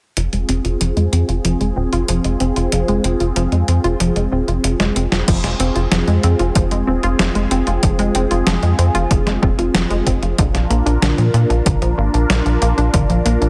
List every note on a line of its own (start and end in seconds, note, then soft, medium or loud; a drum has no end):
0.17 0.28 F1 loud
0.17 0.28 F3 loud
0.17 5.24 C4 medium
0.17 5.24 F4 medium
0.17 5.24 G#4 medium
0.17 closed hi-hat medium
0.33 0.44 F1 medium
0.33 0.44 G#3 medium
0.33 closed hi-hat soft
0.49 0.60 F1 medium
0.49 0.60 C4 medium
0.49 closed hi-hat medium
0.65 0.76 F1 medium
0.65 0.76 F4 medium
0.65 closed hi-hat soft
0.81 0.92 F1 loud
0.81 0.96 F3 medium
0.81 closed hi-hat medium
0.97 1.08 F2 medium
0.97 1.08 G#3 medium
0.97 closed hi-hat soft
1.13 1.24 F2 medium
1.13 1.28 C4 medium
1.13 closed hi-hat medium
1.29 1.40 F1 medium
1.29 1.40 F4 medium
1.29 closed hi-hat soft
1.45 1.56 F1 loud
1.45 1.51 F3 medium
1.45 closed hi-hat medium
1.60 1.72 F1 medium
1.60 1.72 G#3 medium
1.60 closed hi-hat soft
1.76 1.88 D#1 medium
1.76 1.88 C4 medium
1.92 2.04 F1 medium
1.92 2.04 F4 loud
1.92 closed hi-hat soft
2.08 2.20 F1 loud
2.08 2.20 F3 loud
2.08 closed hi-hat medium
2.24 2.36 F1 medium
2.24 2.36 G#3 medium
2.24 closed hi-hat soft
2.40 2.52 F1 medium
2.40 2.52 C4 medium
2.40 closed hi-hat medium
2.56 2.68 F1 medium
2.56 2.68 F4 medium
2.56 closed hi-hat soft
2.72 2.84 F1 medium
2.72 2.88 F3 medium
2.72 closed hi-hat medium
2.88 3.00 F1 medium
2.88 3.00 G#3 loud
2.88 closed hi-hat soft
3.04 3.15 F1 loud
3.04 3.20 C4 medium
3.04 closed hi-hat medium
3.20 3.32 F1 medium
3.20 3.31 F4 medium
3.20 closed hi-hat soft
3.36 3.47 F1 loud
3.36 3.43 F3 loud
3.36 closed hi-hat medium
3.52 3.63 F2 medium
3.52 3.63 G#3 medium
3.52 closed hi-hat soft
3.68 3.79 F2 medium
3.68 3.79 C4 medium
3.68 closed hi-hat medium
3.84 3.95 F1 medium
3.84 3.95 F4 loud
3.84 closed hi-hat soft
4.00 4.11 F1 loud
4.00 4.11 F3 loud
4.00 closed hi-hat medium
4.16 4.27 F1 medium
4.16 4.27 G#3 medium
4.16 closed hi-hat soft
4.32 4.43 D#1 medium
4.32 4.43 C4 medium
4.48 4.59 F1 medium
4.48 4.59 F4 medium
4.48 closed hi-hat soft
4.64 4.75 F1 loud
4.64 4.79 F3 medium
4.64 closed hi-hat medium
4.80 4.91 F1 medium
4.80 4.91 G#3 loud
4.80 snare medium
4.80 closed hi-hat soft
4.96 5.07 F1 medium
4.96 5.11 C4 medium
4.96 closed hi-hat medium
5.12 5.23 F1 medium
5.12 5.23 F4 medium
5.12 snare loud
5.12 closed hi-hat soft
5.28 5.39 F1 loud
5.28 5.39 F3 loud
5.28 10.34 C4 medium
5.28 13.49 F4 medium
5.28 10.34 G#4 medium
5.28 kick loud
5.28 closed hi-hat medium
5.28 crash medium
5.43 5.55 F1 medium
5.43 5.55 G#3 medium
5.43 snare soft
5.43 closed hi-hat soft
5.59 5.71 F1 loud
5.59 5.71 C4 medium
5.59 closed hi-hat medium
5.75 5.87 F1 medium
5.75 5.87 F4 medium
5.75 closed hi-hat soft
5.92 6.03 F1 loud
5.92 6.07 F3 medium
5.92 snare loud
5.92 closed hi-hat medium
6.07 6.19 F2 medium
6.07 6.19 G#3 loud
6.07 closed hi-hat soft
6.23 6.35 F2 medium
6.23 6.39 C4 medium
6.23 closed hi-hat medium
6.39 6.51 F1 medium
6.39 6.51 F4 medium
6.39 closed hi-hat soft
6.55 6.67 F1 loud
6.55 6.62 F3 loud
6.55 kick loud
6.55 closed hi-hat medium
6.71 6.83 F1 medium
6.71 6.83 G#3 medium
6.71 closed hi-hat soft
6.87 6.99 D#1 medium
6.87 6.98 C4 medium
7.03 7.14 F1 medium
7.03 7.15 F4 loud
7.03 closed hi-hat soft
7.19 7.30 F1 medium
7.19 7.30 F3 loud
7.19 snare loud
7.19 closed hi-hat medium
7.35 7.46 F1 medium
7.35 7.46 G#3 medium
7.35 closed hi-hat soft
7.51 7.62 F1 medium
7.51 7.62 C4 medium
7.51 closed hi-hat medium
7.67 7.78 F1 medium
7.67 7.78 F4 medium
7.67 closed hi-hat soft
7.83 7.94 F1 loud
7.83 7.98 F3 medium
7.83 kick loud
7.83 closed hi-hat medium
7.99 8.10 F1 medium
7.99 8.10 G#3 loud
7.99 closed hi-hat soft
8.15 8.26 F1 loud
8.15 8.30 C4 medium
8.15 closed hi-hat medium
8.31 8.42 F1 medium
8.31 8.42 F4 medium
8.31 closed hi-hat soft
8.46 8.58 F1 loud
8.46 8.54 F3 loud
8.46 snare loud
8.46 closed hi-hat medium
8.63 8.74 F2 medium
8.63 8.74 G#3 medium
8.63 closed hi-hat soft
8.78 8.90 F2 loud
8.78 8.90 C4 medium
8.78 closed hi-hat medium
8.94 9.06 F1 medium
8.94 9.06 F4 loud
8.94 closed hi-hat soft
9.11 9.22 F1 loud
9.11 9.22 F3 medium
9.11 kick loud
9.11 closed hi-hat medium
9.26 9.38 F1 medium
9.26 9.38 G#3 medium
9.26 snare soft
9.26 closed hi-hat soft
9.42 9.54 D#1 loud
9.42 9.54 C4 medium
9.42 kick loud
9.58 9.70 F1 medium
9.58 9.70 F4 medium
9.58 closed hi-hat soft
9.74 9.86 F1 loud
9.74 9.90 F3 medium
9.74 snare loud
9.74 closed hi-hat loud
9.90 10.02 F1 medium
9.90 10.02 G#3 loud
9.90 closed hi-hat soft
10.06 10.18 F1 medium
10.06 10.22 C4 medium
10.06 kick medium
10.06 closed hi-hat medium
10.22 10.34 F1 medium
10.22 10.34 F4 medium
10.22 closed hi-hat soft
10.38 10.50 A#1 loud
10.38 10.45 D3 loud
10.38 13.49 D4 medium
10.38 13.49 A#4 medium
10.38 kick loud
10.38 closed hi-hat medium
10.54 10.65 A#1 medium
10.54 10.65 F3 medium
10.54 snare soft
10.54 closed hi-hat soft
10.70 10.81 A#1 loud
10.70 10.81 A#3 medium
10.70 closed hi-hat medium
10.86 10.97 A#1 medium
10.86 10.97 D4 loud
10.86 closed hi-hat soft
11.02 11.13 A#1 loud
11.02 11.13 D3 loud
11.02 snare loud
11.02 closed hi-hat medium
11.18 11.29 A#2 medium
11.18 11.29 F3 medium
11.18 closed hi-hat soft
11.34 11.45 A#2 medium
11.34 11.45 A#3 medium
11.34 closed hi-hat medium
11.50 11.61 A#1 medium
11.50 11.61 D4 medium
11.50 closed hi-hat soft
11.66 11.77 A#1 loud
11.66 11.81 D3 medium
11.66 kick loud
11.66 closed hi-hat medium
11.82 11.93 A#1 medium
11.82 11.93 F3 loud
11.82 closed hi-hat soft
11.98 12.09 G#1 loud
11.98 12.13 A#3 medium
12.14 12.25 A#1 medium
12.14 12.25 D4 medium
12.14 closed hi-hat soft
12.30 12.41 A#1 loud
12.30 12.36 D3 loud
12.30 snare loud
12.30 closed hi-hat medium
12.46 12.57 A#1 medium
12.46 12.57 F3 medium
12.46 closed hi-hat soft
12.62 12.73 A#1 medium
12.62 12.73 A#3 medium
12.62 closed hi-hat medium
12.78 12.89 A#1 medium
12.78 12.89 D4 loud
12.78 closed hi-hat soft
12.93 13.05 A#1 loud
12.93 13.05 D3 loud
12.93 kick loud
12.93 closed hi-hat medium
13.09 13.21 A#1 medium
13.09 13.21 F3 medium
13.09 closed hi-hat soft
13.26 13.37 A#1 medium
13.26 13.37 A#3 medium
13.26 closed hi-hat medium
13.41 13.49 A#1 medium
13.41 13.49 D4 medium
13.41 closed hi-hat soft